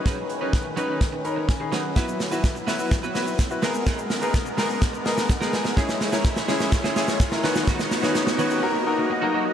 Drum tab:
HH |x-x-x-x-x-x-x-x-|x-o-x-o-x-o-x-o-|x-o-x-o-x-o-x-o-|x-o-x-o-x-o-x-o-|
SH |----------------|xxxxxxxxxxxxxxxx|xxxxxxxxxxxxxxxx|xxxxxxxxxxxxxxxx|
SD |o---o---o---o-o-|o-o-o-o-o-o-o-o-|o-o-o-o-o-oooooo|oooooooooooooooo|
BD |o---o---o---o---|o---o---o---o---|o---o---o---o---|o---o---o---o---|

HH |x-o-x-o---------|
SH |xxxxxxxx--------|
SD |oooooo----------|
BD |o---------------|